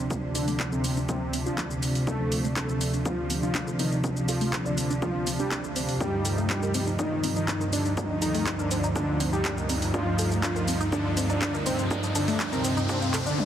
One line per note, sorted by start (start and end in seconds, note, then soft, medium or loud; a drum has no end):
0.00 5.97 D2 medium
0.00 5.97 C3 medium
0.00 13.38 C3 medium
0.00 13.34 F3 medium
0.10 1.31 C3 medium
0.10 1.31 F3 medium
0.10 0.20 D4 loud
0.10 1.31 D4 loud
0.10 kick loud
0.10 shaker soft
0.23 0.28 D4 medium
0.35 0.62 D3 medium
0.35 0.62 D4 loud
0.35 0.47 A4 medium
0.35 open hi-hat loud
0.35 shaker medium
0.48 0.59 A3 loud
0.48 open hi-hat medium
0.48 shaker soft
0.60 0.72 D4 loud
0.60 kick loud
0.60 clap loud
0.60 shaker soft
0.72 0.99 C3 medium
0.72 0.99 C4 loud
0.72 0.84 A4 medium
0.72 shaker soft
0.84 0.90 C4 medium
0.84 open hi-hat loud
0.84 shaker medium
0.97 1.02 D4 loud
0.97 shaker soft
1.09 1.35 C3 medium
1.09 1.35 C4 medium
1.09 1.18 D4 loud
1.09 kick loud
1.09 shaker soft
1.21 1.27 D4 medium
1.33 2.04 C3 medium
1.33 2.04 F3 medium
1.33 1.43 C4 medium
1.33 2.04 D4 loud
1.33 open hi-hat loud
1.33 shaker medium
1.46 1.63 F3 medium
1.46 1.55 D4 medium
1.46 1.64 F4 medium
1.46 shaker soft
1.58 1.70 D4 loud
1.58 kick loud
1.58 clap loud
1.58 shaker soft
1.71 1.82 A4 medium
1.71 shaker soft
1.83 1.88 C4 medium
1.83 open hi-hat loud
1.83 shaker medium
1.95 open hi-hat medium
1.95 shaker soft
2.07 3.27 C3 medium
2.07 3.27 F3 medium
2.07 2.43 A3 loud
2.07 3.27 D4 loud
2.07 2.17 D4 loud
2.07 2.43 A4 loud
2.07 kick loud
2.07 shaker soft
2.20 2.25 D4 medium
2.32 open hi-hat loud
2.32 shaker medium
2.44 2.56 A3 loud
2.44 shaker soft
2.56 2.92 A3 loud
2.56 2.68 D4 loud
2.56 2.92 A4 loud
2.56 kick loud
2.56 clap loud
2.56 shaker soft
2.69 2.80 A4 medium
2.69 shaker soft
2.81 2.87 C4 medium
2.81 open hi-hat loud
2.81 shaker medium
2.94 2.99 D4 loud
2.94 shaker soft
3.05 3.32 F3 medium
3.05 3.15 D4 loud
3.05 3.32 F4 medium
3.05 kick loud
3.05 shaker soft
3.30 4.01 C3 medium
3.30 4.01 F3 medium
3.30 3.40 C4 medium
3.30 4.01 D4 loud
3.30 open hi-hat loud
3.30 shaker medium
3.43 3.69 F3 medium
3.43 3.52 D4 medium
3.43 3.69 F4 loud
3.43 shaker soft
3.55 3.67 D4 loud
3.55 kick loud
3.55 clap loud
3.55 shaker soft
3.67 3.79 A4 medium
3.67 shaker soft
3.79 3.97 D#3 medium
3.79 3.85 C4 medium
3.79 3.97 D#4 medium
3.79 open hi-hat loud
3.79 shaker medium
3.92 shaker soft
4.04 5.24 C3 medium
4.04 5.24 F3 medium
4.04 4.13 D4 loud
4.04 5.24 D4 loud
4.04 kick loud
4.04 shaker soft
4.16 4.22 D4 medium
4.16 shaker soft
4.28 4.55 F3 medium
4.28 4.55 F4 medium
4.28 4.40 A4 medium
4.28 open hi-hat loud
4.28 shaker medium
4.41 4.52 A3 loud
4.41 open hi-hat medium
4.41 shaker soft
4.53 4.65 D4 loud
4.53 kick loud
4.53 clap loud
4.53 shaker soft
4.66 4.92 D3 medium
4.66 4.92 D4 loud
4.66 4.77 A4 medium
4.66 shaker soft
4.78 4.83 C4 medium
4.78 open hi-hat loud
4.78 shaker medium
4.90 4.96 D4 loud
4.90 shaker soft
5.02 5.29 F3 loud
5.02 5.12 D4 loud
5.02 5.29 F4 loud
5.02 kick loud
5.02 shaker soft
5.15 5.20 D4 medium
5.27 5.98 C3 medium
5.27 5.98 F3 medium
5.27 5.36 C4 medium
5.27 5.98 D4 loud
5.27 open hi-hat loud
5.27 shaker medium
5.39 5.57 G3 medium
5.39 5.48 D4 medium
5.39 5.57 G4 medium
5.39 shaker soft
5.51 5.63 D4 loud
5.51 kick loud
5.51 clap loud
5.51 shaker soft
5.64 5.75 A4 medium
5.64 shaker soft
5.76 5.82 C4 medium
5.76 open hi-hat loud
5.76 shaker medium
5.89 open hi-hat medium
5.89 shaker soft
6.01 13.34 D2 medium
6.01 7.21 G2 medium
6.01 13.34 G2 medium
6.01 7.21 F3 medium
6.01 6.36 G3 loud
6.01 6.10 D4 loud
6.01 7.21 D#4 loud
6.01 6.36 G4 loud
6.01 kick loud
6.01 riser medium
6.01 shaker soft
6.13 6.19 D4 medium
6.25 6.37 A4 medium
6.25 open hi-hat loud
6.25 shaker medium
6.38 6.49 A3 loud
6.38 shaker soft
6.50 6.85 G3 loud
6.50 6.62 D4 loud
6.50 6.85 G4 loud
6.50 kick loud
6.50 clap loud
6.50 shaker soft
6.62 6.74 A#4 medium
6.62 shaker soft
6.74 6.80 C4 medium
6.74 open hi-hat loud
6.74 shaker medium
6.87 6.92 D#4 loud
6.87 shaker soft
6.99 7.26 D#3 loud
6.99 7.08 D4 loud
6.99 7.25 D#4 loud
6.99 kick loud
6.99 shaker soft
7.12 7.23 F4 medium
7.24 7.94 G2 medium
7.24 7.94 F3 medium
7.24 7.33 C4 medium
7.24 7.94 D#4 loud
7.24 open hi-hat loud
7.24 shaker medium
7.36 7.63 D#3 medium
7.36 7.63 D#4 loud
7.36 7.45 D#4 medium
7.36 shaker soft
7.48 7.60 D4 loud
7.48 kick loud
7.48 clap loud
7.48 shaker soft
7.61 7.72 A#4 medium
7.61 shaker soft
7.73 7.91 D3 medium
7.73 7.78 C4 medium
7.73 7.91 D4 medium
7.73 open hi-hat loud
7.73 shaker medium
7.85 shaker soft
7.97 9.17 G2 medium
7.97 9.17 F3 medium
7.97 8.07 D4 loud
7.97 9.17 D#4 loud
7.97 kick loud
7.97 shaker soft
8.10 8.15 D4 medium
8.22 8.49 D#3 medium
8.22 8.49 D#4 loud
8.22 8.34 A4 medium
8.22 open hi-hat loud
8.22 shaker medium
8.35 8.46 A3 loud
8.35 open hi-hat medium
8.35 shaker soft
8.46 8.59 D4 loud
8.46 kick loud
8.46 clap loud
8.46 shaker soft
8.59 8.86 D3 medium
8.59 8.86 D4 loud
8.59 8.71 A#4 medium
8.59 shaker soft
8.71 8.77 C4 medium
8.71 open hi-hat loud
8.71 shaker medium
8.84 8.89 D#4 loud
8.84 shaker soft
8.96 9.22 D3 loud
8.96 9.05 D4 loud
8.96 9.22 D4 medium
8.96 kick loud
8.96 shaker soft
9.08 9.20 F4 medium
9.20 9.91 G2 medium
9.20 9.91 F3 medium
9.20 9.30 C4 medium
9.20 9.91 D#4 loud
9.20 open hi-hat loud
9.20 shaker medium
9.33 9.50 G3 medium
9.33 9.42 D#4 medium
9.33 9.50 G4 medium
9.33 shaker soft
9.45 9.57 D4 loud
9.45 kick loud
9.45 clap loud
9.45 shaker soft
9.57 9.69 A#4 medium
9.57 shaker soft
9.69 9.75 C4 medium
9.69 open hi-hat loud
9.69 shaker medium
9.82 open hi-hat medium
9.82 shaker soft
9.94 11.14 G2 medium
9.94 10.30 F3 loud
9.94 11.14 F3 medium
9.94 10.04 D4 loud
9.94 11.14 D#4 loud
9.94 10.30 F4 loud
9.94 kick loud
9.94 shaker soft
10.07 10.12 D4 medium
10.19 10.31 A4 medium
10.19 open hi-hat loud
10.19 shaker medium
10.31 10.43 A3 loud
10.31 shaker soft
10.43 10.79 F3 loud
10.43 10.55 D4 loud
10.43 10.79 F4 loud
10.43 kick loud
10.43 clap loud
10.43 shaker soft
10.56 10.67 A#4 medium
10.56 shaker soft
10.68 10.74 C4 medium
10.68 open hi-hat loud
10.68 shaker medium
10.80 10.86 D#4 loud
10.80 shaker soft
10.92 11.19 D3 loud
10.92 11.19 D4 loud
10.92 11.02 D4 loud
10.92 kick loud
10.92 shaker soft
11.05 11.16 F4 medium
11.17 11.88 G2 medium
11.17 11.88 F3 medium
11.17 11.27 C4 medium
11.17 11.88 D#4 loud
11.17 open hi-hat loud
11.17 shaker medium
11.30 11.56 D3 loud
11.30 11.56 D4 loud
11.30 11.39 D#4 medium
11.30 shaker soft
11.42 11.54 D4 loud
11.42 kick loud
11.42 clap loud
11.42 shaker soft
11.54 11.66 A#4 medium
11.54 shaker soft
11.66 11.84 C3 medium
11.66 11.72 C4 medium
11.66 11.84 C4 medium
11.66 open hi-hat loud
11.66 shaker medium
11.79 shaker soft
11.91 13.11 G2 medium
11.91 13.11 F3 medium
11.91 12.00 D4 loud
11.91 13.11 D#4 loud
11.91 kick loud
11.91 shaker soft
12.03 12.09 D4 medium
12.03 shaker soft
12.15 12.42 D3 medium
12.15 12.42 D4 loud
12.15 12.27 A4 medium
12.15 open hi-hat loud
12.15 shaker medium
12.28 12.39 A3 loud
12.28 open hi-hat medium
12.28 shaker soft
12.40 12.52 D4 loud
12.40 kick loud
12.40 clap loud
12.40 shaker soft
12.53 12.79 C3 loud
12.53 12.79 C4 loud
12.53 12.64 A#4 medium
12.53 shaker soft
12.65 12.70 C4 medium
12.65 open hi-hat loud
12.65 shaker medium
12.77 12.83 D#4 loud
12.77 shaker soft
12.89 13.16 C3 loud
12.89 13.16 C4 loud
12.89 12.99 D4 loud
12.89 kick loud
12.89 shaker medium
13.02 13.13 F4 medium
13.02 shaker soft
13.14 13.19 A4 medium
13.14 clap medium
13.14 open hi-hat loud
13.14 shaker medium
13.26 13.38 D3 medium
13.26 13.44 D4 loud
13.26 13.38 D4 medium
13.26 shaker soft
13.38 high tom medium